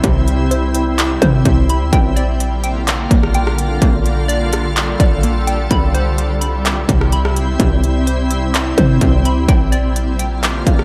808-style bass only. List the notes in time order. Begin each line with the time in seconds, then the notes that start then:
0.04 C2
1.22 C3
1.45 C2
1.81 D2
1.93 A#1
3.11 A#1
3.82 A#1
5.00 A#1
5.71 C2
6.89 C2
7.60 C2
8.78 C3
9.01 C2
9.37 D2
9.49 A#1
10.67 A#1